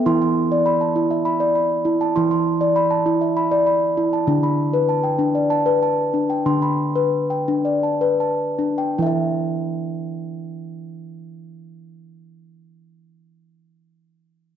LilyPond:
<<
  \new Staff \with { instrumentName = "Steel tongue drum" } { \time 7/8 \key d \mixolydian \tempo 4 = 91 << { <e'' c'''>16 c'''8. b''16 a''8 e''16 b''8 b''8. a''16 | c'''16 c'''8. b''16 a''8 e''16 b''8 b''8. a''16~ | a''16 b''8. a''16 g''8 d''16 a''8 a''8. g''16 | c'''16 b''8. r16 g''8 d''16 a''8 a''8. g''16~ |
g''16 r2. r16 | r2. r8 | } \\ { e'8 r16 d''8 r16 e'8 r16 d''8 r16 e'8 | e'8 r16 d''8 r16 e'8 r16 d''8 r16 e'8 | d'8 r16 b'8 r16 d'8 r16 b'8 r16 d'8 | d'8 r16 b'8 r16 d'8 r16 b'8 r16 d'8 |
r2. r8 | r2. r8 | } >> }
  \new Staff \with { instrumentName = "Steel tongue drum" } { \clef bass \time 7/8 \key d \mixolydian e2.~ e8 | e2.~ e8 | d2.~ d8 | d2.~ d8 |
<e e' e''>2.~ <e e' e''>8~ | <e e' e''>2.~ <e e' e''>8 | }
>>